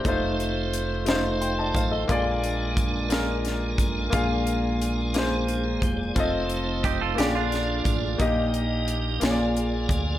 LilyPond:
<<
  \new Staff \with { instrumentName = "Tonewheel organ" } { \time 6/8 \key bes \mixolydian \tempo 4. = 59 << { r4. <a' ees''>16 <c'' f''>8 <d'' g''>16 <ees'' a''>16 <g'' c'''>16~ | <g'' c'''>16 r2 r8. | r2 <d' aes'>16 <f' bes'>16 <g' c''>16 <aes' d''>16~ | <aes' d''>16 r2 r8. |
r2. | } \\ { <a ees' f' c''>2. | <aes d' f' bes'>2.~ | <aes d' f' bes'>2. | <a ees' f' c''>4. <bes f' aes' des'' d''>4. |
<bes ees' g' ees''>4. <bes f' aes' d''>4. | } >> }
  \new Staff \with { instrumentName = "Grand piano" } { \time 6/8 \key bes \mixolydian << { g'16 r4. r16 <g'' c'''>16 <ees'' a''>16 <c'' f''>16 <a' ees''>16~ | <a' ees''>16 r2 r8. | r2. | r2. |
r2. | } \\ { <a ees' f' c''>4~ <a ees' f' c''>16 r16 <a ees' f' c''>4~ <a ees' f' c''>16 r16 | <bes f' aes' d''>4~ <bes f' aes' d''>16 r16 <bes f' aes' bes'>4~ <bes f' aes' bes'>16 r16 | <bes f' aes' f''>4~ <bes f' aes' f''>16 r16 <bes f' aes' c''>4~ <bes f' aes' c''>16 r16 | <c' f' a' ees''>4~ <c' f' a' ees''>16 r16 <bes f' aes' d''>4~ <bes f' aes' d''>16 r16 |
<bes ees' g' ees''>4~ <bes ees' g' ees''>16 r16 <bes f' aes' des'' d''>4~ <bes f' aes' des'' d''>16 r16 | } >> }
  \new Staff \with { instrumentName = "Grand piano" } { \clef bass \time 6/8 \key bes \mixolydian r2. | bes,4. r4. | bes,4. r4. | r4. d4. |
bes,4. bes,4. | }
  \new Staff \with { instrumentName = "Clean electric guitar" } { \time 6/8 \key bes \mixolydian r2. | r2. | r2. | r4 <ees' g'>16 <f' a'>16 g'16 <d' f'>4~ <d' f'>16 |
r2. | }
  \new Staff \with { instrumentName = "Fingered electric bass" } { \clef bass \time 6/8 \key bes \mixolydian f,,2~ f,,8 a,,8 | bes,,2~ bes,,8 a,,8 | bes,,2~ bes,,8 fes,,8 | f,,4. bes,,4 a,,8 |
bes,,4. bes,,4 d,8 | }
  \new DrumStaff \with { instrumentName = "Drums" } \drummode { \time 6/8 <hh bd>8 hh8 hh8 <hh sn>8 hh8 <hh bd>8 | <hh bd>8 hh8 <hh bd>8 <hh sn>8 <hh sn>8 <hh bd>8 | <hh bd>8 hh8 hh8 <hh sn>8 hh8 <hh bd>8 | <hh bd>8 hh8 <hh bd>8 <hh sn>8 <hh sn>8 <hh bd>8 |
<hh bd>8 hh8 hh8 <hh sn>8 hh8 <hh bd>8 | }
>>